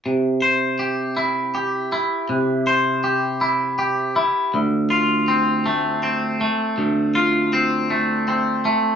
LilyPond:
\new Staff \with { instrumentName = "Clean electric guitar" } { \time 3/4 \key c \mixolydian \tempo 4 = 80 c8 c''8 g'8 e'8 g'8 e'8 | c8 c''8 g'8 e'8 g'8 e'8 | d,8 f'8 c'8 a8 c'8 a8 | d,8 f'8 c'8 a8 c'8 a8 | }